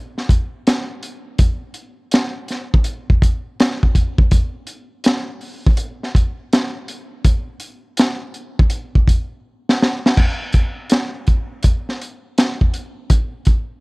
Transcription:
0.18 snare soft
0.29 kick medium
0.29 closed hi-hat medium
0.67 snare loud
0.67 closed hi-hat loud
1.03 closed hi-hat medium
1.38 kick loud
1.38 closed hi-hat medium
1.74 closed hi-hat medium
2.11 snare loud
2.11 closed hi-hat medium
2.48 snare soft
2.48 closed hi-hat medium
2.74 kick loud
2.84 closed hi-hat medium
3.10 kick medium
3.22 kick medium
3.22 closed hi-hat medium
3.60 snare loud
3.60 closed hi-hat loud
3.83 kick medium
3.95 kick medium
3.95 closed hi-hat medium
4.18 kick loud
4.31 kick loud
4.31 closed hi-hat medium
4.67 closed hi-hat medium
5.04 snare loud
5.04 closed hi-hat loud
5.41 open hi-hat soft
5.66 kick loud
5.77 closed hi-hat medium
6.03 snare soft
6.15 kick medium
6.15 closed hi-hat medium
6.53 snare loud
6.53 closed hi-hat medium
6.88 closed hi-hat medium
7.24 kick loud
7.24 closed hi-hat medium
7.60 closed hi-hat medium
7.97 snare medium
7.97 closed hi-hat loud
8.34 closed hi-hat medium
8.59 kick loud
8.70 closed hi-hat medium
8.95 kick medium
9.08 kick medium
9.08 closed hi-hat medium
9.69 snare medium
9.82 snare medium
10.06 snare medium
10.17 kick loud
10.17 crash medium
10.53 kick medium
10.53 closed hi-hat medium
10.90 snare medium
10.90 closed hi-hat loud
11.27 kick medium
11.27 closed hi-hat medium
11.63 kick medium
11.63 closed hi-hat medium
11.89 snare soft
12.01 closed hi-hat medium
12.38 snare loud
12.38 closed hi-hat medium
12.61 kick medium
12.74 closed hi-hat medium
13.10 kick loud
13.10 closed hi-hat medium
13.45 kick medium
13.45 closed hi-hat medium

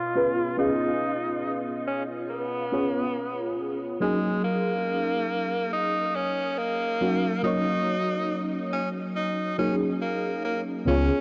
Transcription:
0.00 0.10 B2 medium
0.00 0.11 C#4 medium
0.00 0.11 F4 medium
0.00 0.55 F4 loud
0.00 0.12 G#4 medium
0.00 0.12 C#5 medium
0.15 0.30 B3 medium
0.15 0.30 C#4 medium
0.15 0.30 F4 medium
0.15 0.30 G#4 medium
0.15 0.30 B4 medium
0.57 2.67 B3 medium
0.57 2.68 C#4 medium
0.57 1.58 D#4 loud
0.57 2.68 F4 medium
0.57 2.69 G#4 medium
0.57 2.69 F5 loud
1.88 2.04 C#4 medium
2.30 3.55 B3 medium
2.72 2.95 B3 medium
2.72 2.95 C#4 medium
2.72 2.96 F4 medium
2.72 2.96 G#4 medium
2.72 2.96 C#5 medium
4.00 6.96 F#3 medium
4.00 4.41 G#3 medium
4.00 6.96 A#3 medium
4.00 6.97 C#4 medium
4.00 6.97 D#4 medium
4.00 6.97 G#4 medium
4.44 5.69 A#3 loud
5.73 6.17 D#4 loud
6.16 6.60 C#4 loud
6.58 7.44 A#3 loud
7.01 7.15 F#3 medium
7.01 7.15 A#3 medium
7.01 7.16 C#4 medium
7.01 7.16 D#4 medium
7.01 7.16 F#4 medium
7.43 9.53 F#3 medium
7.43 9.53 A#3 medium
7.43 9.54 C#4 medium
7.43 8.43 D#4 loud
7.43 9.54 D#4 medium
7.43 9.55 C#5 loud
8.73 8.89 C#4 medium
9.16 9.56 D#4 medium
9.58 9.81 F#3 medium
9.58 9.81 A#3 medium
9.58 9.81 C#4 medium
9.58 9.75 C#4 medium
9.58 9.82 D#4 medium
9.58 9.82 G#4 medium
10.02 10.42 A#3 medium
10.45 10.61 A#3 medium
10.86 11.06 C#2 medium
10.86 11.21 B3 medium
10.86 11.21 C#4 medium
10.86 11.21 C#4 loud
10.86 11.21 F4 medium
10.86 11.21 G#4 medium
10.86 11.21 C#5 medium

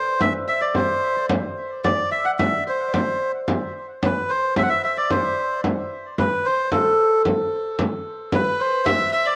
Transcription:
0.00 0.20 A4 medium
0.00 0.21 C5 medium
0.00 0.74 C5 medium
0.00 0.61 D5 medium
0.20 0.47 E5 medium
0.20 0.33 E5 loud
0.20 frame drum medium
0.48 2.11 E5 medium
0.48 0.61 E5 medium
0.61 1.84 D5 medium
0.61 0.75 D5 medium
0.74 1.16 C5 medium
0.74 1.26 C5 medium
0.74 frame drum medium
1.16 2.66 C5 medium
1.29 frame drum medium
1.84 2.10 D5 medium
1.84 2.87 D5 medium
1.84 frame drum medium
2.11 2.25 E5 medium
2.11 2.39 E5 medium
2.25 3.85 F#5 medium
2.25 2.31 F#5 medium
2.38 2.64 E5 medium
2.38 4.12 E5 medium
2.38 frame drum medium
2.67 2.96 C5 medium
2.67 2.93 C5 medium
2.87 4.72 D5 soft
2.94 3.32 C5 medium
2.94 4.10 C5 medium
2.94 frame drum medium
3.48 frame drum medium
4.03 4.35 B4 medium
4.03 4.31 B4 medium
4.03 frame drum medium
4.29 5.10 C5 medium
4.29 4.54 C5 medium
4.56 4.69 E5 medium
4.56 4.63 E5 medium
4.56 frame drum medium
4.63 4.69 F#5 medium
4.69 4.82 E5 loud
4.69 4.84 E5 medium
4.84 4.97 E5 medium
4.84 6.57 E5 medium
4.97 6.82 D5 medium
4.97 5.11 D5 medium
5.10 6.27 C5 medium
5.10 5.61 C5 medium
5.10 frame drum medium
5.64 frame drum medium
6.18 6.46 B4 medium
6.18 6.54 B4 medium
6.18 frame drum medium
6.45 6.70 C5 medium
6.45 8.41 C5 medium
6.72 7.22 A4 medium
6.72 8.94 A4 medium
6.72 frame drum medium
7.25 frame drum medium
7.79 frame drum medium
8.32 8.83 B4 medium
8.32 8.66 B4 medium
8.32 8.62 B4 medium
8.32 frame drum medium
8.60 9.36 C5 medium
8.60 8.85 C5 medium
8.85 9.10 E5 medium
8.85 9.12 E5 medium
8.85 9.11 E5 loud
8.85 frame drum medium
9.11 9.27 E5 medium
9.11 9.36 E5 medium
9.11 9.27 E5 medium
9.26 9.36 D5 medium

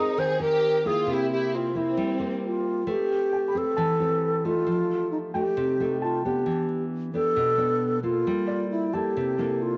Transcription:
0.00 0.16 G#3 medium
0.00 0.37 C4 medium
0.00 0.18 D#4 medium
0.00 0.37 G4 medium
0.00 0.21 G#4 medium
0.00 0.37 A#4 medium
0.00 0.76 C5 medium
0.18 1.05 D#3 medium
0.18 0.41 G#4 medium
0.18 0.41 C5 loud
0.40 0.81 C4 medium
0.40 0.81 G4 medium
0.40 0.83 G4 medium
0.40 0.82 A#4 medium
0.40 0.88 A#4 loud
0.85 1.72 A#3 medium
0.85 1.72 E4 medium
0.85 1.09 F4 medium
0.85 1.72 G4 medium
0.85 1.12 G#4 medium
1.07 1.95 C3 medium
1.07 1.31 E4 medium
1.07 1.31 G4 medium
1.32 1.52 E4 medium
1.32 1.57 G4 medium
1.55 1.76 C4 medium
1.55 1.79 F4 medium
1.75 2.16 A#3 medium
1.75 2.66 C4 medium
1.75 2.17 E4 medium
1.75 2.18 E4 medium
1.75 2.17 G4 medium
1.97 2.85 G3 medium
2.19 2.83 A#3 medium
2.19 2.84 G4 medium
2.45 2.92 F4 medium
2.87 3.75 A3 medium
2.87 3.51 C4 soft
2.87 3.51 G4 medium
2.87 3.51 B4 medium
2.91 3.59 G4 medium
3.33 4.58 G5 soft
3.48 4.71 B5 soft
3.55 3.96 C4 medium
3.55 3.96 G4 medium
3.55 4.47 A4 loud
3.55 3.96 B4 medium
3.77 4.65 E3 medium
3.77 4.85 A5 medium
4.00 4.41 C4 medium
4.00 4.41 G4 medium
4.00 4.41 B4 medium
4.45 5.31 A3 medium
4.45 5.31 D#4 medium
4.45 5.11 F4 medium
4.45 5.31 G4 medium
4.67 5.54 F3 medium
5.12 5.18 D#4 medium
5.34 5.76 A3 medium
5.34 5.76 D#4 medium
5.34 5.98 G4 medium
5.34 5.76 G4 medium
5.34 6.59 G5 medium
5.57 6.44 C3 medium
5.80 6.21 A3 medium
5.80 6.21 D#4 medium
5.80 6.21 G4 medium
6.02 6.23 F4 medium
6.02 6.65 A5 soft
6.25 7.11 B3 medium
6.25 7.11 D4 medium
6.25 6.84 G4 medium
6.25 7.11 G4 medium
6.46 7.34 E3 medium
7.14 7.55 B3 medium
7.14 7.55 D4 medium
7.14 7.56 G4 medium
7.14 8.00 A4 loud
7.36 8.24 B2 medium
7.58 7.99 B3 medium
7.58 8.00 D4 medium
7.58 8.00 G4 medium
8.03 8.89 A#3 medium
8.03 8.90 F4 medium
8.03 8.67 F4 medium
8.03 8.90 A4 medium
8.27 9.14 G3 medium
8.47 9.34 D5 soft
8.71 8.95 E4 medium
8.93 9.35 A#3 medium
8.93 9.35 E4 medium
8.93 9.64 G4 medium
8.93 9.35 A4 medium
8.93 9.35 A5 soft
9.17 9.77 C3 medium
9.39 9.77 A#3 medium
9.39 9.77 E4 medium
9.39 9.77 A4 medium
9.62 9.77 F4 medium

